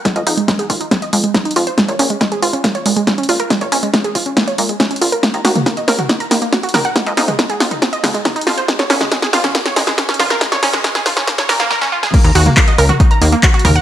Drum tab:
CC |--------------------------------|--------------------------------|--------------------------------|--------------------------------|
HH |x-x-o-x-x-x-o-x-x-x-o-x-x-xxo-x-|x-x-o-x-x-x-o-x-x-x-o-x-x-xxo-x-|x-x-o-x-x-x-o-x-x-x-o-x-x-xxo-x-|x-x-o-x-x-x-o-x-x-x-o-x-x-xxo-x-|
CP |--------------------------------|--------------------------------|--------------------------------|--------------------------------|
SD |o-------o-------o-------o-------|o-------o-------o-------o-------|o-------o-------o-------o-------|o---o---o---o---o---o---o---o---|
T2 |--------------------------------|--------------------------------|--------------------------------|------o-------o-------------o---|
BD |o-------o---o---o-------o-------|o-------o-------o-------o-------|o-------o---o---o-------o-------|o-------o-------o-------o-------|

CC |--------------------------------|--------------------------------|--------------------------------|x-------------------------------|
HH |x-x-o-x-x-x-o-x-x-x-o-x-x-xxo-x-|x-x-o-x-x-x-o-x-x-x-o-x-x-xxo-x-|x-x-o-x-x-x-o-x-x-x-o-x---------|x-x-o-x-x-x-o-x-x-x-o-x-x-xxo-x-|
CP |--------------------------------|--------------------------------|--------------------------------|--------x---------------x-------|
SD |o---o---o---o---o---o---o---o---|o-o-o-o-o-o-o-o-o-o-o-o-o-o-o-o-|o-o-o-o-o-o-o-o-o-o-o-o-o-o---o-|--------------------------------|
T2 |------o-------o-----o---o-------|------o-------o-------------o---|------o-------o-----o-----------|------o-------o-------------o---|
BD |o-------o---o---o-------o-------|o-------o-------o-------o-------|o-------o---o---o---------------|o-------o-------o-------o-------|